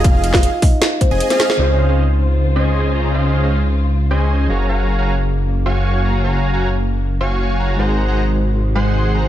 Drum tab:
HH |x-x-x-o-x-x-xxx-|----------------|----------------|----------------|
SD |---o----o----ooo|----------------|----------------|----------------|
BD |o--o--o---o-----|----------------|----------------|----------------|

HH |----------------|----------------|
SD |----------------|----------------|
BD |----------------|----------------|